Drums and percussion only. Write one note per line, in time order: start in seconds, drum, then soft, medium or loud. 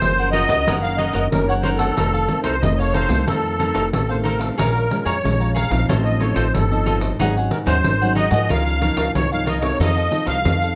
0.02 pandeiro medium
0.19 pandeiro soft
0.33 pandeiro medium
0.49 pandeiro medium
0.68 pandeiro medium
0.84 pandeiro soft
0.98 pandeiro medium
1.13 pandeiro medium
1.32 pandeiro medium
1.49 pandeiro soft
1.63 pandeiro medium
1.79 pandeiro medium
1.97 pandeiro medium
2.15 pandeiro soft
2.29 pandeiro medium
2.44 pandeiro medium
2.63 pandeiro medium
2.80 pandeiro soft
2.94 pandeiro medium
3.09 pandeiro medium
3.28 pandeiro medium
3.45 pandeiro soft
3.60 pandeiro medium
3.75 pandeiro medium
3.93 pandeiro medium
4.11 pandeiro soft
4.25 pandeiro medium
4.41 pandeiro medium
4.59 pandeiro medium
4.77 pandeiro soft
4.91 pandeiro medium
5.06 pandeiro medium
5.25 pandeiro medium
5.42 pandeiro soft
5.56 pandeiro medium
5.71 pandeiro medium
5.90 pandeiro medium
6.06 pandeiro soft
6.21 pandeiro medium
6.36 pandeiro medium
6.55 pandeiro medium
6.72 pandeiro soft
6.86 pandeiro medium
7.01 pandeiro medium
7.20 pandeiro medium
7.37 pandeiro soft
7.51 pandeiro medium
7.67 pandeiro medium
7.84 pandeiro medium
8.02 pandeiro soft
8.16 pandeiro medium
8.31 pandeiro medium
8.50 pandeiro medium
8.67 pandeiro soft
8.82 pandeiro medium
8.97 pandeiro medium
9.15 pandeiro medium
9.33 pandeiro soft
9.47 pandeiro medium
9.62 pandeiro medium
9.81 pandeiro medium
9.98 pandeiro soft
10.12 pandeiro medium
10.27 pandeiro medium
10.45 pandeiro medium
10.62 pandeiro soft